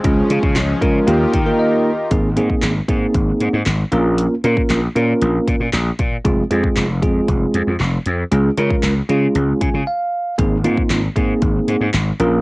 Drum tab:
HH |x-x-x-x-x-x-----|x-x-x-x-x-x-x-x-|x-x-x-x-x-x-x-x-|x-x-x-x-x-x-x-x-|
CP |----x-----------|----x-------x---|----x-------x---|----x-------x---|
SD |----o-----------|----o-------o---|----o-------o---|----o-------o---|
BD |o--o--o---o-----|o--o--o-o-------|---o------o---o-|o--o--o-o-------|

HH |x-x-x-x-x-x-----|x-x-x-x-x-x-x-x-|
CP |----x-----------|----x-------x---|
SD |----o-----------|----o-------o---|
BD |---o------o-----|o--o--o-o-------|